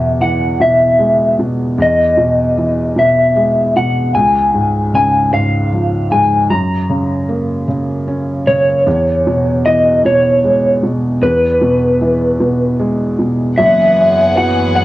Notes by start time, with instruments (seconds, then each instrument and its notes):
Already playing: felt piano E2 B2, clean electric guitar E5
0.21 felt piano E3, clean electric guitar F#5
0.60 felt piano B2, clean electric guitar E5
0.99 felt piano G#3
1.39 felt piano B2
1.78 felt piano E2
1.82 clean electric guitar D#5
2.17 felt piano B2
2.58 felt piano E3
2.96 felt piano B2, clean electric guitar E5
3.36 felt piano G#3
3.76 felt piano B2, clean electric guitar F#5
4.15 felt piano C#2, clean electric guitar G#5
4.54 felt piano G#2
4.94 felt piano C#3, clean electric guitar G#5
5.32 felt piano G#2, clean electric guitar F5
5.72 felt piano F3
6.11 felt piano G#2, clean electric guitar G#5
6.50 felt piano F#2, clean electric guitar A#5
6.89 felt piano C#3
7.29 felt piano A#3
7.68 felt piano C#3
8.08 felt piano C#4
8.47 felt piano C#3, clean electric guitar C#5
8.86 felt piano E2
9.27 felt piano B2
9.65 felt piano E3, clean electric guitar D#5
10.05 felt piano B2, clean electric guitar C#5
10.44 felt piano G#3
10.83 felt piano B2
11.22 felt piano E2, clean electric guitar B4
11.61 felt piano B2
12.01 felt piano E3
12.40 felt piano B2
12.79 felt piano G#3
13.19 felt piano B2
13.57 felt piano F#1 F#2, string section F#2 E3 B3 G#4 F#5, clean electric guitar E5
14.35 felt piano B3 E4 F#4, clean electric guitar F#5
14.76 clean electric guitar F#5